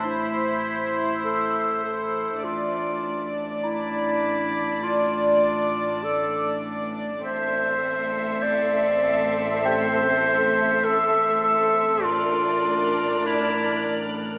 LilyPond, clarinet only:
\new Staff \with { instrumentName = "Clarinet" } { \time 4/4 \key a \phrygian \tempo 4 = 100 e'2 a'4 a'4 | f'4. r8 e'2 | f'2 a'4 r4 | c''2 d''2 |
c''2 a'4 a'4 | f'2 e'4. r8 | }